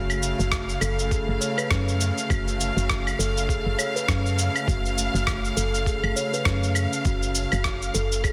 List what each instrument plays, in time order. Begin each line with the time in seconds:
Already playing: fm bass F#1, string section C#3 A3 F5
0.10 cabasa, claves
0.23 cabasa
0.39 fm bass F#1, steel tongue drum F#4, cabasa
0.52 kick, cross-stick, cabasa
0.69 cabasa
0.81 fm bass F#1, steel tongue drum A4, cabasa, claves
0.99 cabasa
1.11 steel tongue drum G#4, kick, cabasa
1.28 fm bass F#1
1.41 steel tongue drum C#5, cabasa
1.58 steel tongue drum B4, cabasa, claves
1.70 fm bass F#2, steel tongue drum C#4, kick, cross-stick, cabasa
1.88 cabasa
2.01 cabasa
2.18 cabasa
2.30 fm bass F#1, steel tongue drum F#4, kick, cabasa, claves
2.48 cabasa
2.60 cabasa
2.76 fm bass F#1, steel tongue drum F#4, cabasa
2.90 kick, cross-stick, cabasa
3.07 cabasa, claves
3.19 fm bass F#1, steel tongue drum A4, cabasa
3.37 cabasa
3.49 steel tongue drum G#4, kick, cabasa
3.66 fm bass F#1
3.79 steel tongue drum C#5, cabasa, claves
3.96 steel tongue drum B4, cabasa
4.08 fm bass F#2, steel tongue drum C#4, kick, cross-stick, cabasa
4.26 cabasa
4.39 cabasa
4.56 cabasa, claves
4.67 fm bass F#1, steel tongue drum F#4, kick, cabasa
4.86 cabasa
4.98 cabasa
5.14 fm bass F#1, steel tongue drum F#4, cabasa
5.27 kick, cross-stick, cabasa, claves
5.45 cabasa
5.57 fm bass F#1, steel tongue drum A4, cabasa
5.74 cabasa
5.86 steel tongue drum G#4, kick, cabasa
6.03 fm bass F#1, claves
6.16 steel tongue drum C#5, cabasa
6.34 steel tongue drum B4, cabasa
6.45 fm bass F#2, steel tongue drum C#4, kick, cross-stick, cabasa
6.63 cabasa
6.75 cabasa, claves
6.93 cabasa
7.05 fm bass F#1, steel tongue drum F#4, kick, cabasa
7.23 cabasa
7.35 cabasa
7.52 fm bass F#1, steel tongue drum F#4, cabasa, claves
7.64 kick, cross-stick, cabasa
7.82 cabasa
7.94 fm bass F#1, steel tongue drum A4, cabasa
8.12 cabasa
8.24 steel tongue drum G#4, kick, cabasa, claves